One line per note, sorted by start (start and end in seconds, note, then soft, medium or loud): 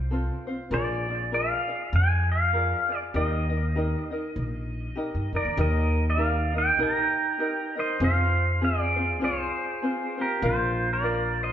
0.00 0.29 C2 medium
0.00 0.11 C4 soft
0.00 0.12 F4 soft
0.00 0.11 C5 medium
0.11 0.48 C4 medium
0.11 0.47 F4 medium
0.11 0.47 A4 medium
0.11 0.46 C5 medium
0.47 0.71 C4 soft
0.47 0.70 F4 medium
0.47 0.71 C5 medium
0.71 1.50 A#1 medium
0.71 1.08 F4 medium
0.71 1.08 G#4 medium
0.71 1.07 A#4 medium
0.71 1.07 D5 medium
0.71 1.34 D5 medium
1.08 1.31 F4 soft
1.08 1.32 G#4 soft
1.08 1.33 D5 medium
1.32 1.69 F4 medium
1.32 1.68 G#4 medium
1.32 1.68 A#4 medium
1.32 1.67 D5 medium
1.32 1.96 F5 medium
1.68 2.54 F4 soft
1.68 2.54 G#4 soft
1.68 2.54 D5 medium
1.93 2.72 F2 loud
1.93 2.31 G#5 loud
2.32 2.93 F5 loud
2.53 2.89 F4 medium
2.53 2.89 G#4 medium
2.53 2.90 A#4 medium
2.53 2.88 D5 medium
2.89 3.14 F4 soft
2.89 3.14 G#4 soft
2.89 3.14 D5 soft
2.89 2.99 D5 medium
3.14 3.93 D#2 medium
3.14 3.50 D#4 medium
3.14 3.51 G4 medium
3.14 3.49 A#4 medium
3.14 3.48 D#5 medium
3.14 5.30 D#5 medium
3.49 3.75 D#4 soft
3.49 3.75 A#4 soft
3.49 3.75 D#5 medium
3.75 4.12 D#4 medium
3.75 4.12 G4 medium
3.75 4.11 A#4 medium
3.75 4.10 D#5 medium
4.11 4.96 D#4 soft
4.11 4.97 A#4 soft
4.11 4.97 D#5 medium
4.36 4.87 A#1 medium
4.96 5.33 D#4 medium
4.96 5.32 G4 medium
4.96 5.33 A#4 medium
4.96 5.33 D#5 medium
5.15 5.31 G2 medium
5.33 5.44 F2 medium
5.33 5.57 D#4 soft
5.33 5.57 A#4 soft
5.33 5.58 A#4 soft
5.33 5.60 D5 medium
5.45 5.56 D#2 medium
5.57 6.79 D#2 loud
5.57 6.17 D#4 medium
5.57 6.16 G4 medium
5.57 6.17 A#4 medium
5.57 6.04 A#4 medium
5.57 6.19 D#5 medium
5.57 6.09 D#5 medium
6.10 6.53 D5 medium
6.10 6.58 F5 medium
6.17 6.54 D#4 medium
6.17 6.54 G4 medium
6.17 6.54 A#4 medium
6.54 6.78 D#4 soft
6.54 6.78 A#4 soft
6.54 6.78 D#5 soft
6.58 6.79 D#5 medium
6.58 6.81 G5 medium
6.78 7.02 A#1 medium
6.78 7.39 D#4 medium
6.78 7.38 G4 medium
6.78 7.39 A#4 medium
6.78 7.40 D#5 medium
6.83 7.74 G5 medium
6.83 7.80 A#5 medium
7.39 7.76 D#4 medium
7.39 7.75 G4 medium
7.39 7.76 A#4 medium
7.39 7.74 D#5 medium
7.76 8.00 D#4 soft
7.76 8.01 A#4 medium
7.76 8.00 C5 medium
7.76 8.00 D#5 medium
7.80 8.01 D#5 medium
8.00 9.21 F2 loud
8.00 8.60 C4 medium
8.00 8.62 F4 medium
8.00 8.60 G#4 medium
8.00 8.61 C5 medium
8.00 8.59 C5 medium
8.04 8.64 F5 medium
8.61 8.97 C4 medium
8.61 8.95 F4 medium
8.61 8.97 G#4 medium
8.61 9.19 G#4 medium
8.61 8.94 C5 medium
8.61 9.24 D5 medium
8.95 9.20 C4 soft
8.95 9.20 F4 soft
8.95 9.21 C5 medium
9.20 9.45 C2 loud
9.20 9.81 C4 medium
9.20 9.83 F4 medium
9.20 9.81 G#4 medium
9.20 10.16 G#4 medium
9.20 9.82 C5 medium
9.25 9.42 C#5 medium
9.42 10.22 C5 medium
9.82 10.18 C4 medium
9.82 10.17 F4 medium
9.82 10.18 G#4 medium
9.82 10.16 C5 medium
10.17 10.42 C4 soft
10.17 10.41 F4 medium
10.17 10.42 G4 medium
10.17 10.42 C5 soft
10.22 10.45 A#4 medium
10.42 11.52 A#1 loud
10.42 11.01 F4 medium
10.42 10.89 F4 medium
10.42 11.02 A#4 medium
10.42 11.05 D#5 medium
10.42 11.03 F5 medium
10.46 10.93 C5 medium
10.93 11.37 A#4 medium
10.93 11.42 D5 medium
11.02 11.52 F4 medium
11.02 11.52 A#4 medium
11.02 11.52 F5 medium
11.43 11.52 C5 medium
11.43 11.52 D#5 medium